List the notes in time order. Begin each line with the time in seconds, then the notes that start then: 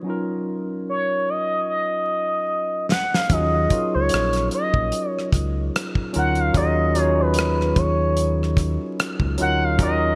0.02 F#3 C#4
0.06 D#4 F4 A#4
0.89 C#5
1.29 D#5
1.70 D#5
2.90 F#5, snare
3.14 F5, snare
3.30 D#2 F#3 C#4 D#4 F4 G#4 D#5, kick, closed hi-hat
3.69 F#3 C#4 D#4 F4 A#4, kick, closed hi-hat
3.94 C#2 C#5
4.09 closed hi-hat
4.14 A#1, cross-stick
4.33 cross-stick, closed hi-hat
4.51 D#5, closed hi-hat
4.74 A#1, kick
4.92 closed hi-hat
5.09 C#5
5.19 cross-stick
5.33 C#2, kick, cross-stick, closed hi-hat
5.76 cross-stick, closed hi-hat
5.95 kick
6.13 D2 F#3 C#4 D#4 F4 A#4, closed hi-hat
6.18 F#5
6.35 closed hi-hat
6.40 F5
6.53 D#2 F#3 C#4 D#4 F4 G#4 D#5, kick, closed hi-hat
6.94 F#3 C#4 D#4 F4 G#4, closed hi-hat
7.02 C#5
7.20 B4
7.34 closed hi-hat
7.39 cross-stick
7.61 cross-stick
7.76 D#2 C#5, kick, closed hi-hat
8.17 closed hi-hat
8.43 cross-stick
8.57 kick, cross-stick, closed hi-hat
9.00 cross-stick, closed hi-hat
9.20 C#2, kick
9.38 D2 F#3 C#4 D#4 F4 A#4 F#5, closed hi-hat
9.64 F5
9.79 D#2 F#3 C#4 D#4 F4 A#4 D#5, kick, closed hi-hat